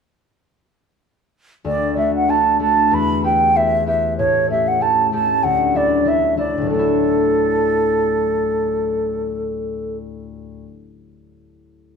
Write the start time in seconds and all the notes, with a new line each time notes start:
1.65 D2 D5
1.96 A3 D4 F#4 E5
2.16 F#5
2.27 A3 D4 F#4 A5
2.59 A3 D4 F#4 A5
2.91 E2 B5
3.23 B3 E4 G4 G5
3.55 B3 E4 G4 E5
3.86 B3 E4 G4 E5
4.18 A2 C#5
4.47 A3 C#4 E5
4.53 G4
4.68 F#5
4.80 A3 C#4 G4 A5
5.12 A3 C#4 G4 A5
5.44 D2 F#5
5.74 F#3 D4 E4 D5
6.05 F#3 D4 E4 E5
6.37 F#3 D4 E4 D5
6.57 D2
6.62 A2
6.66 F#3 A3 A4
6.75 D4
6.79 E4